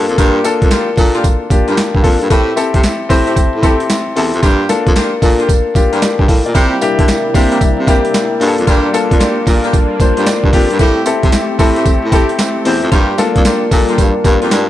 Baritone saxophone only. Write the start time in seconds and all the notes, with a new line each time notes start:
0.09 F2
0.18 G2
0.62 F2
0.98 A#2
1.51 G2
1.68 G2
1.95 G2
2.04 F2
2.22 G2
2.31 A2
2.74 C3
3.10 A2
3.37 A2
3.54 A2
4.17 E2
4.34 F2
4.43 G2
4.87 F2
5.22 A#2
5.75 G2
5.93 G2
6.19 G2
6.29 A2
6.46 A#2
6.55 C3
6.99 D3
7.35 C3
7.61 C3
7.79 C3
8.41 G2
8.58 F2
8.68 G2
9.12 F2
9.47 A#2
10.00 G2
10.18 G2
10.44 G2
10.53 F2
10.71 G2
10.80 A2
11.24 C3
11.59 A2
11.86 A2
12.04 A2
12.66 E2
12.83 F2
12.92 G2
13.36 F2
13.72 A#2
13.99 G2
14.25 G2
14.42 F2
14.52 G2